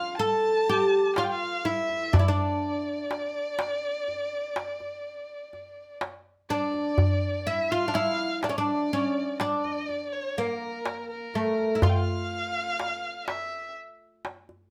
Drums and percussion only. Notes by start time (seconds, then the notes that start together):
0.68 darbuka ka
1.16 darbuka tek
1.65 darbuka ka
1.89 darbuka ka
2.14 darbuka dum
3.11 darbuka tek
3.59 darbuka tek
4.08 darbuka ka
4.56 darbuka tek
4.80 darbuka ka
5.53 darbuka ka
6.01 darbuka tek
6.50 darbuka ka
6.74 darbuka ka
6.98 darbuka dum
7.94 darbuka tek
8.43 darbuka tek
9.40 darbuka tek
9.65 darbuka ka
9.89 darbuka ka
10.37 darbuka ka
10.85 darbuka tek
11.34 darbuka ka
11.58 darbuka ka
11.82 darbuka dum
12.80 darbuka tek
13.28 darbuka tek
14.25 darbuka tek
14.49 darbuka ka